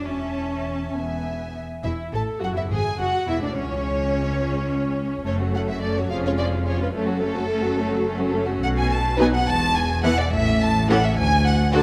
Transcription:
0.05 double bass section E1, viola section C#4, cello section C#4, violin section E5 A5
0.95 double bass section E1, viola section B3, violin section E5 G#5
1.84 double bass section E1, cello section E2, viola section E4, violin section E4 E5
2.12 double bass section A1, cello section A2, violin section A4 A5, viola section A4
2.41 double bass section F#1, cello section F#2, violin section F#4 F#5, viola section F#4
2.55 cello section E2, viola section E4, violin section E4 E5
2.70 double bass section G#1, cello section G#2, viola section G#4, violin section G#4 G#5
2.98 double bass section F#1, cello section F#2, viola section F#4, violin section F#4 F#5
3.26 double bass section E1, cello section E2, viola section E4, violin section E4 E5
3.40 cello section D2, viola section D4, violin section D4 D5
3.55 cello section C#2, double bass section C#2, viola section C#4, violin section C#4 C#5
5.24 double bass section F#1, cello section F#2, viola section A3 C#4, violin section A3 A4 C#5
5.39 viola section F#3 A3, violin section C#4 F#4
5.54 violin section A3 A4 F#5, viola section A3 C#4
5.68 viola section F#3 A3, violin section C#4 F#4 E5
5.81 viola section A3 C#4, violin section A3 A4 D5
5.96 viola section F#3 A3, violin section C#4 F#4 C#5
6.09 double bass section F1, cello section F2, viola section F3 C#4, violin section F4 G#4 F5
6.25 viola section G#3 F4, violin section C#4 F4 C#5
6.38 viola section F3 C#4, violin section F4 G#4 D5
6.52 viola section G#3 F4, violin section C#4 F4
6.66 viola section F3 C#4, violin section F4 G#4 C#5
6.79 viola section G#3 F4, violin section C#4 F4 B4
6.93 double bass section F#1, cello section F#2, violin section A3 A4, viola section A3 C#4
7.07 viola section F#3 A3, violin section C#4 F#4
7.21 violin section A3 A4, viola section A3 C#4
7.34 viola section F#3 A3, violin section C#4 F#4
7.48 violin section A3 A4, viola section A3 C#4
7.62 viola section F#3 A3, violin section C#4 F#4
7.76 violin section A3 A4, viola section A3 C#4
7.90 viola section F#3 A3, violin section C#4 F#4
8.04 violin section A3 A4, viola section A3 C#4
8.18 viola section F#3 A3, violin section C#4 F#4
8.32 violin section A3 A4, viola section A3 C#4
8.46 viola section F#3 A3, violin section C#4 F#4
8.61 double bass section B1, cello section B2, violin section F#5
8.79 violin section G#5
8.91 violin section A5
9.17 viola section F#3 B3, violin section D#4 B4 G#5
9.34 violin section F#5
9.46 double bass section E1, cello section E2, violin section A5
9.75 violin section G#5
10.03 viola section E3 B3, violin section E4 B4 F#5
10.20 violin section D5
10.31 double bass section A1, cello section A2, violin section E5
10.63 violin section A5
10.89 viola section E3 C#4, violin section G4 A4 F#5
11.05 violin section E5
11.16 cello section D2, double bass section D2, violin section G#5
11.46 violin section F#5
11.73 viola section D3 D4, violin section F#4 A4 A5

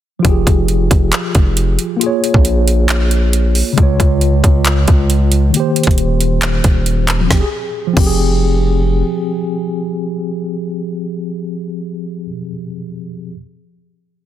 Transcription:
0.19 tine electric piano F3 F4
0.25 808-style bass F1, tine electric piano G4, kick, closed hi-hat
0.29 tine electric piano G#4
0.47 808-style bass F1, kick, closed hi-hat
0.68 closed hi-hat
0.91 808-style bass F1, kick, closed hi-hat
1.12 clap, closed hi-hat
1.35 808-style bass F1, kick, closed hi-hat
1.57 closed hi-hat
1.79 closed hi-hat
1.97 tine electric piano A#3 F4
2.01 tine electric piano G#4, closed hi-hat
2.06 tine electric piano C#5
2.24 closed hi-hat
2.34 808-style bass A#1, kick
2.45 closed hi-hat
2.68 closed hi-hat
2.89 clap, closed hi-hat
3.11 closed hi-hat
3.33 closed hi-hat
3.55 open hi-hat
3.73 tine electric piano C#3 G#3
3.78 808-style bass C#2, tine electric piano F4, kick, closed hi-hat
3.83 tine electric piano C#5
4.00 808-style bass C#2, kick, closed hi-hat
4.21 closed hi-hat
4.44 808-style bass C#2, kick, closed hi-hat
4.65 clap, closed hi-hat
4.88 808-style bass C#2, kick, closed hi-hat
5.10 closed hi-hat
5.32 closed hi-hat
5.50 tine electric piano D#3 A#3
5.54 tine electric piano G4, closed hi-hat
5.60 tine electric piano C5
5.76 closed hi-hat
5.83 808-style bass D#1, kick, closed hi-hat
5.91 closed hi-hat
5.98 closed hi-hat
6.21 closed hi-hat
6.42 clap, closed hi-hat
6.64 808-style bass D#1, kick, closed hi-hat
6.86 closed hi-hat
7.08 clap, closed hi-hat
7.21 tine electric piano F3
7.27 808-style bass F1, tine electric piano C4, kick, snare
7.34 tine electric piano G4
7.40 tine electric piano G#4
7.87 tine electric piano F3
7.93 808-style bass F1, tine electric piano C4, kick, crash
8.00 tine electric piano G4
8.07 tine electric piano G#4

